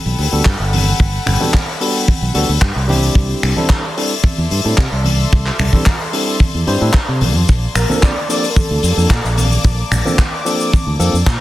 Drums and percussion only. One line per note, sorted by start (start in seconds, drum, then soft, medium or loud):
0.18 open hi-hat loud
0.45 kick loud
0.45 clap loud
0.73 open hi-hat loud
0.73 high conga medium
1.00 kick loud
1.26 finger snap medium
1.26 open hi-hat loud
1.26 low conga medium
1.41 high conga medium
1.54 kick loud
1.54 clap loud
1.81 open hi-hat loud
2.08 kick loud
2.08 high conga medium
2.35 open hi-hat loud
2.61 kick loud
2.61 clap loud
2.89 open hi-hat loud
2.89 high conga medium
3.15 kick loud
3.43 finger snap medium
3.43 open hi-hat loud
3.56 high conga medium
3.70 kick loud
3.70 clap loud
3.98 open hi-hat loud
4.24 kick loud
4.24 open hi-hat medium
4.24 high conga medium
4.51 open hi-hat loud
4.78 kick loud
4.78 clap loud
5.05 open hi-hat loud
5.05 high conga loud
5.33 kick loud
5.46 clap soft
5.59 finger snap medium
5.59 open hi-hat loud
5.59 low conga medium
5.73 kick medium
5.73 high conga medium
5.86 kick loud
5.86 clap loud
6.13 open hi-hat loud
6.40 kick loud
6.40 high conga medium
6.67 open hi-hat loud
6.93 kick loud
6.93 clap loud
7.21 open hi-hat loud
7.21 high conga medium
7.48 kick loud
7.48 shaker medium
7.75 finger snap medium
7.75 open hi-hat loud
7.75 shaker medium
7.90 high conga medium
7.90 shaker soft
8.03 kick loud
8.03 clap loud
8.03 shaker medium
8.30 open hi-hat loud
8.30 shaker medium
8.44 shaker soft
8.56 kick loud
8.56 open hi-hat medium
8.56 high conga medium
8.56 shaker medium
8.83 open hi-hat loud
8.83 shaker medium
8.98 shaker soft
9.10 kick loud
9.10 clap loud
9.10 shaker medium
9.25 shaker soft
9.38 open hi-hat loud
9.38 high conga medium
9.38 shaker medium
9.52 shaker soft
9.65 kick loud
9.65 shaker medium
9.92 finger snap medium
9.92 open hi-hat medium
9.92 low conga medium
9.92 shaker medium
10.06 high conga medium
10.06 shaker soft
10.18 kick loud
10.18 clap loud
10.18 shaker medium
10.46 open hi-hat loud
10.46 shaker medium
10.60 shaker soft
10.73 kick loud
10.73 high conga medium
10.73 shaker medium
11.00 open hi-hat loud
11.00 shaker medium
11.15 shaker medium
11.26 kick loud
11.26 clap loud
11.26 shaker medium